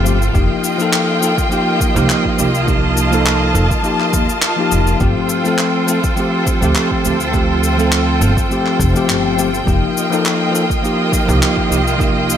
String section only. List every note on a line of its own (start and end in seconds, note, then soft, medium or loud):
0.00 9.63 F4 medium
0.00 0.31 A4 medium
0.00 0.31 C5 medium
0.00 0.31 G5 medium
0.35 4.97 A#3 medium
0.35 4.97 D#5 medium
0.35 2.66 G5 medium
2.68 4.99 A5 medium
5.00 9.63 A4 medium
5.00 9.63 C5 medium
5.00 12.37 G5 medium
9.68 12.37 A#3 medium
9.68 12.37 F4 medium
9.68 12.37 D#5 medium